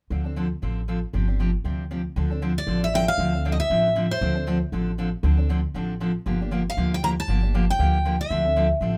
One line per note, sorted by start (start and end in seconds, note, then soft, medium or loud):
0.10 0.52 D2 medium
0.10 0.24 D3 medium
0.10 0.25 F3 medium
0.10 0.25 C4 medium
0.10 0.24 D4 medium
0.10 0.23 A4 medium
0.24 0.35 C4 soft
0.24 0.36 D4 soft
0.24 0.36 A4 soft
0.36 0.46 D3 medium
0.36 0.46 F3 medium
0.36 0.46 C4 medium
0.36 0.47 D4 medium
0.36 0.47 A4 medium
0.62 1.03 A1 medium
0.62 0.80 D3 medium
0.62 0.80 F3 medium
0.62 0.80 C4 medium
0.62 0.80 D4 medium
0.62 0.80 A4 medium
0.88 0.98 D3 medium
0.88 0.98 F3 medium
0.88 0.98 C4 medium
0.88 0.98 D4 medium
0.88 0.98 A4 medium
1.13 1.55 G1 medium
1.13 1.27 C3 medium
1.13 1.27 F3 medium
1.13 1.27 C4 medium
1.13 1.27 D4 medium
1.13 1.26 G4 medium
1.28 1.39 C4 soft
1.28 1.39 D4 soft
1.28 1.39 G4 soft
1.39 1.49 C3 medium
1.39 1.49 F3 medium
1.39 1.50 C4 medium
1.39 1.50 D4 medium
1.39 1.50 G4 medium
1.64 2.06 D2 medium
1.64 1.83 C3 medium
1.64 1.83 F3 medium
1.64 1.83 C4 medium
1.64 1.83 D4 medium
1.64 1.83 G4 medium
1.91 2.01 C3 medium
1.91 2.01 F3 medium
1.91 2.01 C4 medium
1.91 2.01 D4 medium
1.91 2.01 G4 medium
2.16 2.57 D2 medium
2.16 2.30 D3 medium
2.16 2.30 F3 medium
2.16 2.30 C4 medium
2.16 2.30 D4 medium
2.16 2.29 A4 medium
2.30 2.41 C4 soft
2.30 2.41 D4 soft
2.30 2.41 A4 medium
2.42 2.52 D3 medium
2.42 2.52 F3 medium
2.42 2.52 C4 medium
2.42 2.52 D4 medium
2.42 2.52 A4 medium
2.58 2.81 D5 medium
2.67 3.08 A1 medium
2.67 2.85 D3 medium
2.67 2.85 F3 medium
2.67 2.86 C4 medium
2.67 2.86 D4 medium
2.67 2.86 A4 medium
2.84 2.95 E5 medium
2.94 3.03 D3 medium
2.94 3.04 F3 medium
2.94 3.04 C4 medium
2.94 3.04 D4 medium
2.94 3.04 A4 medium
2.94 3.08 G5 medium
3.08 3.52 F5 medium
3.18 3.59 D2 medium
3.18 3.32 D3 medium
3.18 3.33 F3 medium
3.18 3.33 C4 medium
3.18 3.33 D4 medium
3.18 3.32 A4 medium
3.33 3.44 C4 soft
3.33 3.44 D4 soft
3.33 3.44 A4 soft
3.45 3.55 D3 medium
3.45 3.55 F3 medium
3.45 3.55 C4 medium
3.45 3.55 D4 medium
3.45 3.55 A4 medium
3.52 3.59 D#5 medium
3.60 4.12 E5 medium
3.70 4.11 A1 medium
3.70 3.88 D3 medium
3.70 3.88 F3 medium
3.70 3.88 C4 medium
3.70 3.88 D4 medium
3.70 3.89 A4 medium
3.96 4.06 D3 medium
3.96 4.06 F3 medium
3.96 4.06 C4 medium
3.96 4.06 D4 medium
3.96 4.06 A4 medium
4.11 4.58 C5 medium
4.21 4.62 D2 medium
4.21 4.35 D3 medium
4.21 4.35 F3 medium
4.21 4.35 C4 medium
4.21 4.35 D4 medium
4.21 4.34 A4 medium
4.35 4.46 C4 soft
4.35 4.46 D4 soft
4.35 4.46 A4 medium
4.47 4.57 D3 medium
4.47 4.57 F3 medium
4.47 4.57 C4 medium
4.47 4.57 D4 medium
4.47 4.57 A4 medium
4.72 5.13 A1 medium
4.72 4.90 D3 medium
4.72 4.91 F3 medium
4.72 4.91 C4 medium
4.72 4.91 D4 medium
4.72 4.91 A4 medium
4.98 5.08 D3 medium
4.98 5.08 F3 medium
4.98 5.08 C4 medium
4.98 5.08 D4 medium
4.98 5.09 A4 medium
5.23 5.64 D2 medium
5.23 5.37 D3 medium
5.23 5.37 F3 medium
5.23 5.37 C4 medium
5.23 5.37 D4 medium
5.23 5.36 A4 medium
5.37 5.49 C4 soft
5.37 5.49 D4 soft
5.37 5.48 A4 medium
5.49 5.59 D3 medium
5.49 5.59 F3 medium
5.49 5.60 C4 medium
5.49 5.60 D4 medium
5.49 5.60 A4 medium
5.74 6.16 A1 medium
5.74 5.93 D3 medium
5.74 5.93 F3 medium
5.74 5.93 C4 medium
5.74 5.93 D4 medium
5.74 5.93 A4 medium
6.00 6.10 D3 medium
6.00 6.11 F3 medium
6.00 6.11 C4 medium
6.00 6.11 D4 medium
6.00 6.11 A4 medium
6.26 6.67 G1 medium
6.26 6.39 D3 medium
6.26 6.40 F3 medium
6.26 6.40 A#3 medium
6.26 6.40 D4 medium
6.26 6.40 G4 medium
6.41 6.51 A#3 soft
6.41 6.51 D4 soft
6.41 6.51 G4 soft
6.51 6.61 D3 medium
6.51 6.61 F3 medium
6.51 6.62 A#3 medium
6.51 6.62 D4 medium
6.51 6.62 G4 medium
6.70 6.92 F5 medium
6.77 7.18 D2 medium
6.77 6.95 D3 medium
6.77 6.95 F3 medium
6.77 6.95 A#3 medium
6.77 6.95 D4 medium
6.77 6.96 G4 medium
6.94 7.03 G5 medium
7.03 7.13 D3 medium
7.03 7.13 F3 medium
7.03 7.13 A#3 medium
7.03 7.13 D4 medium
7.03 7.13 G4 medium
7.03 7.09 A#5 medium
7.20 7.70 A5 medium
7.28 7.69 G1 medium
7.28 7.42 D3 medium
7.28 7.42 F3 medium
7.28 7.42 A#3 medium
7.28 7.42 D4 medium
7.28 7.41 G4 medium
7.42 7.53 A#3 soft
7.42 7.54 D4 soft
7.42 7.53 G4 medium
7.54 7.64 D3 medium
7.54 7.64 F3 medium
7.54 7.64 A#3 medium
7.54 7.64 D4 medium
7.54 7.64 G4 loud
7.70 8.20 G5 medium
7.79 8.20 D2 medium
7.79 7.97 D3 medium
7.79 7.97 F3 medium
7.79 7.97 A#3 medium
7.79 7.97 D4 medium
7.79 7.98 G4 medium
8.05 8.15 D3 medium
8.05 8.15 F3 medium
8.05 8.15 A#3 medium
8.05 8.15 D4 medium
8.05 8.16 G4 medium
8.21 8.68 E5 medium
8.30 8.71 D2 medium
8.30 8.44 D3 medium
8.30 8.44 F3 medium
8.30 8.45 C4 medium
8.30 8.45 D4 medium
8.30 8.44 A4 medium
8.45 8.55 C4 soft
8.45 8.56 D4 soft
8.45 8.56 A4 medium
8.56 8.66 D3 medium
8.56 8.66 F3 medium
8.56 8.66 C4 medium
8.56 8.66 D4 medium
8.56 8.67 A4 medium
8.81 8.97 A1 medium
8.81 8.97 D3 medium
8.81 8.97 F3 medium
8.81 8.97 C4 medium
8.81 8.97 D4 medium
8.81 8.97 A4 medium